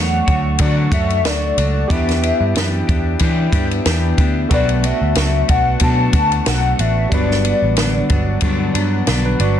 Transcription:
Already playing: picked electric bass E2, tine electric piano F#3 A3 D4 A4, clean electric guitar A3 D4 F#4 C#5, glass harmonica A4 F#5 C#6, soft synth lead F#5
0.26 picked electric bass D2, clean electric guitar A3 D4 F#4 C#5, kick, ride
0.58 clean electric guitar D3 F#3 A3 D4 F#4, picked electric bass D3, soft synth lead D5, kick, ride
0.91 picked electric bass F#2, clean electric guitar A3 D4 F#4 C#5, soft synth lead E5, kick, ride
1.10 ride
1.24 picked electric bass D2, clean electric guitar A3 D4 F#4, soft synth lead D5, snare, ride
1.57 picked electric bass C#2, clean electric guitar A3 D4 F#4, ride
1.88 picked electric bass E2, clean electric guitar E3 B3 D4 G4, tine electric piano B3 D4 E4 G4, glass harmonica B4 E5 G5, soft synth lead E5, kick, ride
1.93 tine electric piano B4
2.09 snare, ride
2.22 clean electric guitar B3 D4 G4, ride
2.40 picked electric bass G2
2.54 clean electric guitar E3 B3 D4 G4, snare, ride
2.87 picked electric bass E2, clean electric guitar B3 D4 G4, kick, ride
3.19 clean electric guitar E3 B3 D4 G4, picked electric bass E3, kick, ride
3.52 picked electric bass G2, clean electric guitar B3 D4 G4, kick, ride
3.71 ride
3.85 picked electric bass E2, clean electric guitar E3 B3 D4 G4, snare, ride
4.17 picked electric bass D2, clean electric guitar B3 D4 G4, kick, ride
4.49 picked electric bass B1, clean electric guitar B2 F#3 A3 D4 F#4, tine electric piano A3 B3 D4 F#4, glass harmonica F#5 A5, kick, ride
4.53 tine electric piano B4, soft synth lead D5
4.69 ride
4.83 clean electric guitar A3 D4 F#4, soft synth lead E5, ride
5.01 picked electric bass D2
5.15 picked electric bass C#2, clean electric guitar F#3 A3 D4 F#4, snare, ride
5.48 picked electric bass B1, clean electric guitar A3 D4 F#4, soft synth lead F#5, kick, ride
5.80 picked electric bass B2, clean electric guitar B2 F#3 A3 D4 F#4, soft synth lead A5, kick, ride
6.13 picked electric bass D2, clean electric guitar A3 D4 F#4, soft synth lead A5, kick, ride
6.32 ride
6.46 picked electric bass B1, clean electric guitar F#3 A3 D4 F#4, soft synth lead F#5, snare, ride
6.79 picked electric bass A1, clean electric guitar A3 D4 F#4, soft synth lead E5, ride
7.09 picked electric bass G1, clean electric guitar G2 D3 F#3 B3 D4, tine electric piano G3 B3 D4 F#4, glass harmonica D5, soft synth lead D5, kick, ride
7.14 tine electric piano B4
7.31 snare
7.44 clean electric guitar F#3 B3 D4, ride
7.62 picked electric bass A1
7.76 clean electric guitar D3 F#3 B3 D4, snare, ride
8.09 picked electric bass G1, clean electric guitar F#3 B3 D4, kick, ride
8.41 clean electric guitar G2 D3 F#3 B3 D4, picked electric bass G2, kick, ride
8.74 picked electric bass G2, clean electric guitar F#3 B3 D4, ride
9.06 picked electric bass B1, clean electric guitar D3 F#3 B3 D4, snare, ride
9.26 tine electric piano D4 B4
9.39 picked electric bass G1, clean electric guitar F#3 B3 D4, tine electric piano F#4 D5, ride

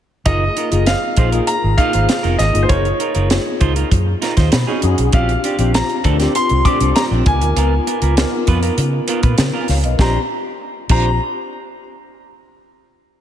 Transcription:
0.25 fingered electric bass F#1, tine electric piano A#3 D#4 F4 G#4, clean electric guitar D#4 F4 A#4, grand piano D#5, kick, closed hi-hat
0.57 clean electric guitar D#4 F4 A#4, closed hi-hat
0.72 fingered electric bass F#1, tine electric piano A#3 D#4 F4 G#4, clean electric guitar D#4 F4 A#4, closed hi-hat
0.86 grand piano F5, muted clean electric guitar stroke, snare, closed hi-hat
1.02 muted clean electric guitar stroke
1.17 fingered electric bass A#1, tine electric piano A#3 D#4 F4 G#4, clean electric guitar D#4 F4 C5, kick, closed hi-hat
1.32 tine electric piano A#3 D#4 F4 G#4, clean electric guitar D#4 F4 A#4, closed hi-hat
1.47 grand piano A#5, muted clean electric guitar stroke, closed hi-hat
1.63 fingered electric bass G#1, muted clean electric guitar stroke
1.77 tine electric piano A#3 D#4 F4 G#4, clean electric guitar D#4 F4 A#4, grand piano F5, kick, closed hi-hat
1.93 fingered electric bass G#1, clean electric guitar D#4 F4 C5, closed hi-hat
2.09 muted clean electric guitar stroke, snare, closed hi-hat
2.23 fingered electric bass F1, clean electric guitar D#4 F4 A#4, closed hi-hat
2.39 fingered electric bass G#1, grand piano D#5, muted clean electric guitar stroke, snare, closed hi-hat
2.54 fingered electric bass G1, tine electric piano A#3 D#4 F4 G#4, muted clean electric guitar stroke, closed hi-hat
2.63 grand piano C5
2.69 fingered electric bass F#1, clean electric guitar D#4 F4 A#4, grand piano C#5, kick, closed hi-hat
2.85 closed hi-hat
2.99 clean electric guitar D#4 F4 A#4, closed hi-hat
3.15 fingered electric bass F#1, clean electric guitar D#4 F4 A#4, closed hi-hat
3.30 tine electric piano A#3 D#4 F4 G#4, snare, closed hi-hat
3.46 muted clean electric guitar stroke
3.60 fingered electric bass C#2, clean electric guitar D#4 F4 C5, kick, closed hi-hat
3.76 clean electric guitar D#4 F4 A#4, closed hi-hat
3.91 fingered electric bass F#2, muted clean electric guitar stroke, kick, closed hi-hat
4.06 muted clean electric guitar stroke
4.21 clean electric guitar D#4 F4 A#4, snare, closed hi-hat
4.37 fingered electric bass D#2, clean electric guitar D#4 F4 C5, kick, snare, closed hi-hat
4.52 fingered electric bass B2, tine electric piano B5, muted clean electric guitar stroke, snare, closed hi-hat
4.67 tine electric piano C#4 D#4 F#4 G#4, clean electric guitar C#4 D#4 G#4
4.82 fingered electric bass F#2, tine electric piano C#4 D#4 F#4 G#4, closed hi-hat
4.98 fingered electric bass B1, muted clean electric guitar stroke, closed hi-hat
5.12 fingered electric bass A#1, clean electric guitar C4 D4 G4, tine electric piano F4, grand piano F5, kick, closed hi-hat
5.29 closed hi-hat
5.44 clean electric guitar C4 D4 G4, closed hi-hat
5.59 fingered electric bass A#1, tine electric piano C4 D4 F4 G4, clean electric guitar C4 D4 G4, closed hi-hat
5.74 grand piano A#5, muted clean electric guitar stroke, snare, closed hi-hat
5.89 muted clean electric guitar stroke, closed hi-hat
6.04 fingered electric bass D2, clean electric guitar C4 D4 A4, tine electric piano C4 D4 F4 A#4, kick, closed hi-hat
6.19 tine electric piano C4 D4 F4 G4, clean electric guitar C4 D4 G4, snare, closed hi-hat
6.35 grand piano C6, muted clean electric guitar stroke, closed hi-hat
6.49 fingered electric bass C2, muted clean electric guitar stroke, closed hi-hat
6.65 tine electric piano A3 C4 D4 F4, clean electric guitar C4 D4 G4, grand piano D6, kick, closed hi-hat
6.81 fingered electric bass C2, clean electric guitar C4 D4 A4, closed hi-hat
6.95 grand piano A#5, snare, closed hi-hat
7.11 fingered electric bass A#1, clean electric guitar C4 D4 G4
7.26 fingered electric bass C#2, tine electric piano B3 D#4 F4 A#4, grand piano G#5, muted clean electric guitar stroke, kick, closed hi-hat
7.41 fingered electric bass D2, muted clean electric guitar stroke, closed hi-hat
7.56 fingered electric bass C#2, clean electric guitar B3 F4 A#4, closed hi-hat
7.87 clean electric guitar B3 F4 A#4, closed hi-hat
8.02 fingered electric bass C#2, clean electric guitar B3 F4 A#4, closed hi-hat
8.17 tine electric piano B3 D#4 F4 A#4, snare, closed hi-hat
8.32 muted clean electric guitar stroke
8.47 fingered electric bass F2, clean electric guitar B3 F4 B4, kick, closed hi-hat
8.62 clean electric guitar B3 F4 A#4, closed hi-hat
8.78 fingered electric bass C#3, muted clean electric guitar stroke, closed hi-hat
8.93 muted clean electric guitar stroke
9.08 clean electric guitar B3 F4 A#4, closed hi-hat
9.23 fingered electric bass A#2, clean electric guitar B3 F4 B4, kick, closed hi-hat
9.38 fingered electric bass C#3, muted clean electric guitar stroke, snare, closed hi-hat
9.53 clean electric guitar B3 F4 A#4, tine electric piano F5 G#5
9.68 fingered electric bass C#2, tine electric piano C#5 F5, muted clean electric guitar stroke, snare, open hi-hat
9.84 fingered electric bass B1, tine electric piano B4 D#5, muted clean electric guitar stroke, closed hi-hat
9.99 fingered electric bass A#1, tine electric piano C4 D4 F4 G4, clean electric guitar D4 G4 C5, grand piano A#5, kick, snare
10.89 fingered electric bass A#1, tine electric piano C4 D4 F4 G4, clean electric guitar D4 G4 C5, grand piano A#5, kick, crash

